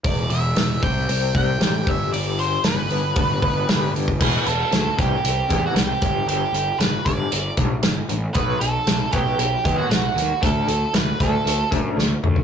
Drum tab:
CC |----------------|----------------|x---------------|----------------|
HH |o-o-o-o-o-o-o-o-|o-o-o-o-o-o-o-o-|--x-x-x-x-x-x-x-|x-x-x-x-x-x-x-x-|
SD |----o-------o---|----o-------o---|----o-------o---|----o-------o---|
T2 |----------------|----------------|----------------|----------------|
FT |----------------|----------------|----------------|----------------|
BD |o-----o---o---o-|--------o-o----o|o-----o---o---o-|------o---o-----|

CC |----------------|----------------|
HH |x-x-x-x-x-x-x-x-|x-x-x-x-x-x-----|
SD |----o-------o---|----o-------o---|
T2 |----------------|--------------o-|
FT |----------------|---------------o|
BD |o-----o---o-----|o-----o---o-----|